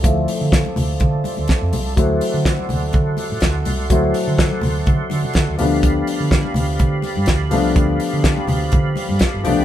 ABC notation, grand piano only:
X:1
M:4/4
L:1/8
Q:1/4=124
K:Ddor
V:1 name="Grand piano"
[F,A,CE]8 | [^F,A,CE]8 | [^F,A,CE]6- [F,A,CE] [=F,A,B,D]- | [F,A,B,D]6- [F,A,B,D] [F,A,B,D]- |
[F,A,B,D]6- [F,A,B,D] [F,A,B,D] |]